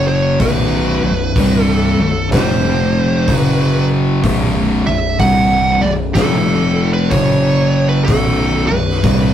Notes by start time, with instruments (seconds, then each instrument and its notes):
Already playing: picked electric bass F#1, distorted electric guitar F#2 C#3 F#3
0.08 lead electric guitar C#5
0.40 picked electric bass B0, distorted electric guitar B1 F#2 B2, lead electric guitar B4, kick, open hi-hat
1.02 picked electric bass B0, distorted electric guitar B1 F#2
1.36 picked electric bass C1, distorted electric guitar C2 G2 C3, kick, open hi-hat
1.64 lead electric guitar A4
1.98 picked electric bass B0, distorted electric guitar B1 F#2
2.32 picked electric bass F1, distorted electric guitar F2 C3 F3, lead electric guitar C5, kick, snare, open hi-hat
3.28 picked electric bass F#1, distorted electric guitar F#2 C#3 F#3, kick, open hi-hat
3.33 lead electric guitar B4
4.24 picked electric bass B0, distorted electric guitar B1 F#2 B2, kick, open hi-hat
4.86 picked electric bass B0, distorted electric guitar B1 F#2, lead electric guitar E5
5.19 picked electric bass C1, distorted electric guitar C2 G2 C3, lead electric guitar F#5, kick, open hi-hat
5.81 picked electric bass B0, distorted electric guitar B1 F#2, lead electric guitar D5
6.14 picked electric bass F1, distorted electric guitar F2 C3 F3, lead electric guitar A4, kick, snare, open hi-hat
6.93 lead electric guitar B4
7.10 picked electric bass F#1, distorted electric guitar F#2 C#3 F#3, lead electric guitar C#5, kick, open hi-hat
7.88 lead electric guitar B4
8.05 picked electric bass B0, distorted electric guitar B1, lead electric guitar A4, kick, open hi-hat
8.09 distorted electric guitar F#2 B2
8.67 picked electric bass B0, distorted electric guitar B1, lead electric guitar B4
8.71 distorted electric guitar F#2
8.89 snare
9.03 picked electric bass C1, distorted electric guitar C2 G2 C3, kick, open hi-hat